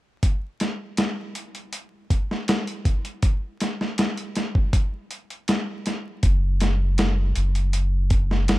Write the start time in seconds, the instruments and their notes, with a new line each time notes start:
0.23 kick, closed hi-hat
0.60 snare, closed hi-hat
0.97 snare, closed hi-hat
1.35 closed hi-hat
1.55 closed hi-hat
1.73 closed hi-hat
2.10 kick, closed hi-hat
2.31 snare
2.48 snare, closed hi-hat
2.67 closed hi-hat
2.85 kick, closed hi-hat
3.05 closed hi-hat
3.23 kick, closed hi-hat
3.60 snare, closed hi-hat
3.81 snare
3.98 snare, closed hi-hat
4.17 closed hi-hat
4.35 snare, closed hi-hat
4.55 kick
4.73 kick, closed hi-hat
5.11 closed hi-hat
5.30 closed hi-hat
5.48 snare, closed hi-hat
5.86 snare, closed hi-hat
6.23 sub bass F#1, kick, closed hi-hat
6.60 snare, closed hi-hat
6.98 snare, closed hi-hat
7.35 sub bass F#1, closed hi-hat
7.55 closed hi-hat
7.73 closed hi-hat
8.10 kick, closed hi-hat
8.31 snare
8.48 snare, closed hi-hat